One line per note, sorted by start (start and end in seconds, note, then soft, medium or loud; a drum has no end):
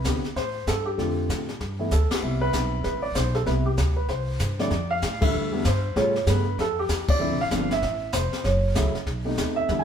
0.00 0.21 B4 medium
0.04 0.23 D2 medium
0.04 0.23 D3 soft
0.04 0.23 B3 soft
0.04 0.23 C4 soft
0.04 0.23 G4 medium
0.04 kick soft
0.04 snare soft
0.04 hi-hat pedal soft
0.24 muted upright bass stroke soft
0.24 snare soft
0.36 0.66 A2 medium
0.36 0.69 C5 medium
0.36 brush sweep soft
0.36 kick soft
0.36 snare soft
0.67 0.98 G2 medium
0.67 0.88 A4 medium
0.67 kick soft
0.67 snare soft
0.67 hi-hat pedal soft
0.85 1.94 G4 medium
0.98 1.28 F2 medium
0.98 1.45 D3 medium
0.98 1.45 A3 medium
0.98 1.45 C4 soft
0.98 1.45 F4 medium
0.98 brush sweep soft
0.98 kick soft
0.98 snare soft
1.29 1.59 A2 medium
1.29 kick soft
1.29 snare soft
1.29 hi-hat pedal soft
1.49 snare soft
1.60 1.91 G2 medium
1.60 brush sweep soft
1.60 kick soft
1.60 snare soft
1.79 1.90 E3 medium
1.79 1.91 A3 medium
1.79 1.91 B3 soft
1.79 1.91 E4 medium
1.91 2.10 D2 medium
1.91 2.12 A4 medium
1.91 kick soft
1.91 snare soft
1.91 hi-hat pedal medium
2.11 2.40 G4 medium
2.11 snare medium
2.11 ride medium
2.22 2.53 C2 medium
2.22 3.09 G3 soft
2.22 3.09 B3 soft
2.22 3.09 C4 soft
2.22 3.09 E4 medium
2.22 brush sweep soft
2.41 2.83 B4 loud
2.53 2.84 B1 medium
2.53 kick soft
2.53 snare soft
2.53 hi-hat pedal soft
2.84 3.15 A1 medium
2.84 3.03 B4 medium
2.84 brush sweep soft
2.84 kick soft
2.84 snare soft
3.02 3.16 D5 medium
3.15 3.46 B1 medium
3.15 3.36 C5 medium
3.15 kick soft
3.15 snare medium
3.15 hi-hat pedal medium
3.35 3.40 A4 medium
3.35 snare soft
3.45 3.77 C2 medium
3.45 3.64 C3 medium
3.45 3.64 G3 soft
3.45 3.65 B3 soft
3.45 3.65 E4 medium
3.45 3.52 B4 medium
3.45 brush sweep soft
3.45 kick soft
3.45 snare soft
3.66 3.95 G4 medium
3.77 4.08 D2 medium
3.77 kick soft
3.77 snare medium
3.77 hi-hat pedal soft
3.97 4.08 B4 medium
4.08 4.39 C2 medium
4.08 4.56 C5 medium
4.08 brush sweep soft
4.08 kick soft
4.08 snare soft
4.39 4.70 G2 medium
4.39 kick soft
4.39 snare medium
4.39 hi-hat pedal medium
4.59 4.70 F2 soft
4.59 4.70 D3 soft
4.59 4.70 G3 soft
4.59 4.70 A3 soft
4.59 4.70 E4 medium
4.59 4.89 D5 medium
4.59 snare soft
4.70 5.01 F2 medium
4.70 brush sweep soft
4.70 kick soft
4.70 snare soft
4.91 5.23 F5 loud
5.02 5.32 A2 medium
5.02 kick soft
5.02 snare medium
5.02 hi-hat pedal soft
5.21 5.51 D3 medium
5.21 5.51 G3 medium
5.21 5.51 A3 medium
5.21 5.51 E4 medium
5.21 5.62 E5 medium
5.21 kick medium
5.21 ride medium
5.33 5.64 E2 medium
5.33 brush sweep soft
5.52 5.63 D3 medium
5.52 5.63 G3 medium
5.52 5.64 A3 medium
5.52 5.64 B3 medium
5.65 5.95 G2 medium
5.65 5.98 C5 medium
5.65 kick soft
5.65 snare medium
5.65 hi-hat pedal medium
5.96 6.26 A2 medium
5.96 6.13 C#3 medium
5.96 6.14 G3 medium
5.96 6.14 A3 medium
5.96 6.14 F4 medium
5.96 6.25 C#5 medium
5.96 brush sweep soft
5.96 kick soft
5.96 snare soft
6.16 snare soft
6.26 6.57 G2 medium
6.26 6.44 C#3 medium
6.26 6.44 G3 soft
6.26 6.45 A3 medium
6.26 6.45 B3 medium
6.26 6.60 B4 medium
6.26 kick soft
6.26 snare medium
6.26 hi-hat pedal medium
6.58 6.88 F2 medium
6.58 6.77 A4 medium
6.58 brush sweep soft
6.58 kick soft
6.58 snare soft
6.79 7.10 G4 medium
6.89 7.19 E2 medium
6.89 kick soft
6.89 snare medium
6.89 hi-hat pedal medium
7.08 7.38 D5 loud
7.08 kick medium
7.08 ride medium
7.19 7.32 D2 medium
7.19 7.37 D3 medium
7.19 7.37 F3 medium
7.19 7.38 C4 medium
7.19 7.38 E4 medium
7.19 brush sweep soft
7.32 7.41 C2 medium
7.41 7.50 A1 medium
7.41 7.69 F5 loud
7.51 7.81 G1 medium
7.51 7.69 D3 medium
7.51 7.69 F3 medium
7.51 7.69 C4 medium
7.51 7.69 D4 medium
7.51 kick soft
7.51 snare medium
7.51 hi-hat pedal soft
7.71 8.16 E5 medium
7.71 snare soft
7.82 8.12 A1 medium
7.82 brush sweep soft
7.82 kick soft
7.82 snare soft
8.13 8.31 F1 medium
8.13 8.45 C5 medium
8.13 kick soft
8.13 snare medium
8.13 hi-hat pedal medium
8.33 snare soft
8.44 8.74 F#1 medium
8.44 9.03 C#5 medium
8.44 brush sweep soft
8.44 kick soft
8.44 snare soft
8.75 8.93 C#2 medium
8.75 8.93 C#3 medium
8.75 8.93 F#3 soft
8.75 8.93 A3 soft
8.75 8.93 E4 medium
8.75 kick soft
8.75 snare medium
8.75 hi-hat pedal soft
8.95 snare soft
9.06 9.37 B1 medium
9.06 brush sweep soft
9.06 kick soft
9.06 snare soft
9.25 9.66 C3 medium
9.25 9.66 A3 soft
9.25 9.66 B3 soft
9.25 9.66 D#4 medium
9.37 9.68 D#2 medium
9.37 kick soft
9.37 snare medium
9.37 hi-hat pedal soft
9.56 9.77 E5 loud
9.68 9.84 E2 medium
9.68 9.84 D3 medium
9.68 9.84 G3 soft
9.68 9.84 B3 medium
9.68 9.84 E4 medium
9.68 brush sweep soft
9.68 kick soft
9.68 snare soft
9.79 9.84 G#5 medium